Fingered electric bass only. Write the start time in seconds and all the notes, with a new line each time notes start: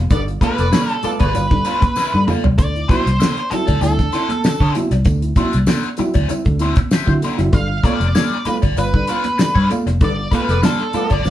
0.10 G1
0.59 F1
1.04 muted fingered electric bass stroke
1.20 G1
1.35 G1
2.14 G2
2.44 C2
2.58 D2
3.06 C2
3.52 muted fingered electric bass stroke
3.68 D2
3.81 D2
4.61 D3
4.91 C2
5.05 D2
5.54 C2
5.99 muted fingered electric bass stroke
6.16 D2
6.30 muted fingered electric bass stroke
6.46 D2
7.08 D3
7.39 F#1
7.53 G1
8.00 F1
8.45 muted fingered electric bass stroke
8.63 G1
8.76 G1
9.56 G2
9.86 F1
10.02 G1
10.49 F1
10.94 muted fingered electric bass stroke
11.11 G1
11.24 G1